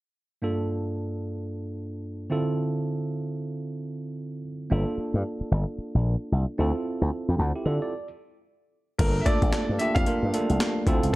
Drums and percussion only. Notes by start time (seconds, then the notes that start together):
8.99 kick, closed hi-hat, crash
9.26 kick, closed hi-hat
9.42 kick, closed hi-hat
9.53 snare, clap, closed hi-hat
9.79 closed hi-hat
9.96 kick, closed hi-hat
10.06 closed hi-hat
10.34 closed hi-hat
10.50 closed hi-hat
10.60 snare, clap, closed hi-hat
10.87 kick, closed hi-hat
11.03 closed hi-hat